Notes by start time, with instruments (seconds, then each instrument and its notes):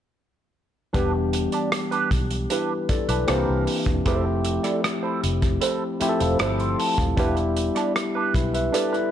0.93 fingered electric bass E1, tine electric piano E3 G3 B3 D4 G4, clean electric guitar D4 G4 B4, kick, closed hi-hat
1.14 muted clean electric guitar stroke
1.33 muted clean electric guitar stroke, closed hi-hat
1.52 clean electric guitar D4 G4 D5, closed hi-hat
1.72 muted clean electric guitar stroke, cross-stick, closed hi-hat
1.91 clean electric guitar D4 G4 B4, closed hi-hat
2.11 fingered electric bass B1, muted clean electric guitar stroke, kick, closed hi-hat
2.31 muted clean electric guitar stroke, closed hi-hat
2.50 clean electric guitar D4 G4 B4, tine electric piano E4 B4, closed hi-hat
2.89 tine electric piano A4 D5, muted clean electric guitar stroke, muted fingered electric bass stroke, kick, closed hi-hat
3.08 fingered electric bass B1, clean electric guitar D4 G4 B4, tine electric piano E4 B4, closed hi-hat
3.27 fingered electric bass C2, tine electric piano E3 A#3 C4 D4 G4, clean electric guitar E4 A#4 C5, cross-stick, closed hi-hat
3.49 fingered electric bass C2
3.67 muted clean electric guitar stroke, open hi-hat
3.86 fingered electric bass E1, muted clean electric guitar stroke, kick, closed hi-hat
4.05 fingered electric bass F1, tine electric piano F3 A3 C4 E4 G4, clean electric guitar E4 A4 C5, kick, closed hi-hat
4.26 muted clean electric guitar stroke
4.45 muted clean electric guitar stroke, closed hi-hat
4.63 clean electric guitar E4 A4 D5, cross-stick, closed hi-hat
4.84 muted clean electric guitar stroke, cross-stick, closed hi-hat
5.03 clean electric guitar E4 A4 C5
5.23 fingered electric bass F1, closed hi-hat
5.42 muted clean electric guitar stroke, kick, closed hi-hat
5.61 clean electric guitar E4 A4 C5, closed hi-hat
6.00 tine electric piano F3 A3 C4 E4 G4, muted clean electric guitar stroke, muted fingered electric bass stroke, closed hi-hat
6.09 tine electric piano A4
6.20 fingered electric bass E1, clean electric guitar E4 A4 C5, vibraphone F5, closed hi-hat
6.39 fingered electric bass G1, clean electric guitar E4 A4 C5, vibraphone A5, cross-stick, closed hi-hat
6.60 vibraphone C6, closed hi-hat
6.79 vibraphone A5, muted clean electric guitar stroke, open hi-hat
6.97 fingered electric bass D#1, vibraphone F5, muted clean electric guitar stroke, kick, closed hi-hat
7.17 fingered electric bass E1, tine electric piano G3 B3 D4 E4 G4, clean electric guitar D4 G4 B4, kick, closed hi-hat
7.37 muted clean electric guitar stroke, closed hi-hat
7.57 muted clean electric guitar stroke, closed hi-hat
7.75 clean electric guitar D4 G4 D5, cross-stick, closed hi-hat
7.96 cross-stick, closed hi-hat
8.15 clean electric guitar D4 G4 B4
8.34 fingered electric bass B1, tine electric piano E4 B4, kick, closed hi-hat
8.54 tine electric piano B4 E5, muted clean electric guitar stroke, closed hi-hat
8.72 clean electric guitar D4 G4 B4, tine electric piano A4 D5, cross-stick, closed hi-hat
8.93 tine electric piano E4 B4, closed hi-hat